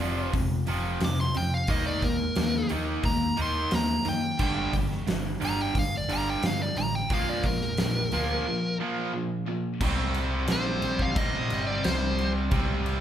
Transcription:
Already playing: D5
0.00 F1 F2 C3 F3, open hi-hat
0.33 F1 F2 C3, kick, open hi-hat
0.67 F1 F2 C3 F3, open hi-hat
1.01 F2 C3, snare, open hi-hat
1.05 D6
1.19 C6, snare
1.35 F2 C3 G5, open hi-hat
1.54 F5
1.67 D#2 D#3 A#3 D#4 D#5, kick, open hi-hat
1.87 D5
2.02 D#2 D#3 A#3 A#4, kick, open hi-hat
2.36 D#2 D#3 A#3, snare, open hi-hat
2.69 D#2 D#3 A#3 D#4, open hi-hat
3.03 D#2 D#3 A#3 A#5, kick, open hi-hat
3.37 D#2 D#3 A#3 D#4, open hi-hat
3.42 C6
3.71 D#2 D#3 A#3, snare, open hi-hat
3.75 A#5
4.05 F#2 D#3 A#3 G5, open hi-hat
4.39 G1 G2 D3 G3 G5, kick, crash
4.73 G1 G2 D3, kick, open hi-hat
4.92 snare
5.07 G1 G2 D3, snare, open hi-hat
5.40 G1 G2 D3 G3, open hi-hat
5.45 A#5
5.62 G5
5.75 G1 G2 D3 F5, kick, open hi-hat
5.97 D5
6.09 G1 G2 D3 G3 A#5, open hi-hat
6.30 G5
6.43 G2 D3 F5, snare, open hi-hat
6.62 D5
6.76 A1 G2 D3 A#5, open hi-hat
6.95 G5
7.10 A#1 A#2 F3 A#3 F5, kick, open hi-hat
7.29 D5
7.43 A#1 A#2 F3 A#4, kick, open hi-hat
7.61 snare
7.77 A#1 A#2 F3, snare, open hi-hat
8.12 D2 A#2 F3 A#3, open hi-hat
8.47 A#2 F3
8.80 A#2 F3 A#3
9.13 A#2 F3
9.47 A#2 F3
9.80 C2 C3 G3 C4, kick, crash
10.14 crash
10.47 A#1, snare, crash
10.52 C5
10.82 A#1, crash
10.99 F5, kick
11.15 A#1 C3 G3 C4 D#5, kick, crash
11.50 G1, crash
11.67 D5
11.84 C2 C5, snare, crash
12.18 crash
12.50 C2 C3 G3 C4, kick, crash
12.86 crash

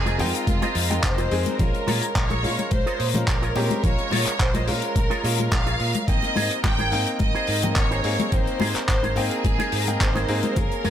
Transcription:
Already playing: F1 G#3 C4 D#4 G#4 A#4 G5 A#5
0.06 F4 G#4 C5 D#5, closed hi-hat, high conga
0.18 F2 G#3 C4 D#4 F4 G5, open hi-hat, muted conga
0.34 muted clean electric guitar stroke, closed hi-hat
0.47 F1, kick, closed hi-hat, high conga
0.62 F4 G#4 C5 D#5, closed hi-hat, muted conga
0.75 F2, open hi-hat
0.90 G#3 C4 D#4 G5, closed hi-hat, high conga
1.03 F1 C5, kick, clap, closed hi-hat
1.18 F4 G#4 C5 D#5, closed hi-hat, muted conga
1.31 F2 G#3 C4 D#4 G#4, open hi-hat
1.46 closed hi-hat, high conga
1.58 A#1 G#3 C#4 F4 A#4, kick, closed hi-hat, muted conga, low conga
1.75 closed hi-hat
1.87 A#2 F4 G#4 A#4 C#5, open hi-hat, high conga
2.02 closed hi-hat
2.15 A#1 C#5, kick, clap, closed hi-hat, muted conga
2.30 F4 G#4 A#4 C#5, closed hi-hat, high conga
2.43 A#2 G#3 C#4 F4, open hi-hat
2.58 muted clean electric guitar stroke, closed hi-hat, muted conga
2.71 A#1 C5, kick, closed hi-hat, high conga
2.86 F4 G#4 A#4 C#5, closed hi-hat
3.00 A#2, open hi-hat
3.14 G#3 C#4 F4, closed hi-hat, muted conga, high conga, low conga
3.28 A#1 A#4, kick, clap, closed hi-hat
3.42 F4 G#4 A#4 C#5, closed hi-hat
3.55 A#2 G#3 C4 C#4 G4, open hi-hat, muted conga
3.71 closed hi-hat, high conga
3.83 A#1 G#3 C#4 F4 C#5, kick, closed hi-hat, low conga
3.99 closed hi-hat
4.11 A#2 F4 G#4 A#4 C#5, open hi-hat, muted conga, high conga
4.26 muted fingered electric bass stroke, clap, closed hi-hat
4.40 A#1 C5, kick, clap, closed hi-hat
4.54 F4 G#4 A#4 D#5, closed hi-hat, muted conga, high conga
4.67 A#2 G#3 C#4 F4 A#4, open hi-hat
4.82 muted clean electric guitar stroke, closed hi-hat
4.96 A#1, kick, closed hi-hat, high conga
5.10 F4 G#4 A#4 C#5, closed hi-hat, muted conga
5.23 A#2 G#3 C#4 F4, open hi-hat
5.38 closed hi-hat, high conga
5.52 A#1 F5, kick, clap, closed hi-hat, muted conga
5.66 F4 G#4 A#4 C#5, closed hi-hat
5.80 A#2, open hi-hat
5.95 closed hi-hat, high conga
6.07 G#1 A#3 C4 D#4 A#4 D#5 G5 A#5, kick, closed hi-hat, low conga
6.22 closed hi-hat, muted conga
6.35 G#2 D#4 G4 G#4 C5, open hi-hat, high conga
6.51 closed hi-hat
6.64 G#1 G5, kick, clap, closed hi-hat, muted conga
6.78 D#4 G4 G#4 C5, closed hi-hat, high conga
6.91 G#2 A#3 C4 D#4 G5, open hi-hat
7.06 muted clean electric guitar stroke, closed hi-hat
7.19 G#1 D#5, kick, closed hi-hat, muted conga, high conga
7.34 D#4 G4 G#4 C5, closed hi-hat
7.47 G#2, open hi-hat
7.62 A#3 C4 D#4 G5, closed hi-hat, muted conga, high conga, low conga
7.76 G#1 C#5, kick, clap, closed hi-hat
7.91 D#4 G4 G#4 C5, closed hi-hat
8.04 G#2 A#3 C4 D#4 G#4, open hi-hat
8.20 closed hi-hat, muted conga, high conga
8.31 G#1 A#3 C4 D#4 C5 G5, kick, closed hi-hat, low conga
8.47 closed hi-hat
8.60 G#2 D#4 G4 G#4 C5, open hi-hat, muted conga, high conga
8.75 muted fingered electric bass stroke, clap, closed hi-hat
8.88 G#1 C5, kick, clap, closed hi-hat
9.03 D#4 G4 G#4 C5, closed hi-hat, high conga
9.15 G#2 A#3 C4 D#4 G#4 G5, open hi-hat, muted conga
9.31 muted clean electric guitar stroke, closed hi-hat
9.44 G#1, kick, closed hi-hat, high conga
9.59 D#4 G4 G#4 C5, closed hi-hat, muted conga
9.72 G#2, open hi-hat
9.87 A#3 C4 D#4 G5, closed hi-hat, high conga
10.01 G#1 C5, kick, clap, closed hi-hat
10.15 D#4 G4 G#4 C5, closed hi-hat, muted conga
10.28 G#2 A#3 C4 D#4 G#4, open hi-hat
10.43 closed hi-hat, high conga
10.56 F#1 A#3 C#4 G#4 A#4 F5, kick, closed hi-hat, muted conga, low conga
10.72 closed hi-hat
10.84 F#2 F4 F#4 A#4 C#5, open hi-hat, high conga

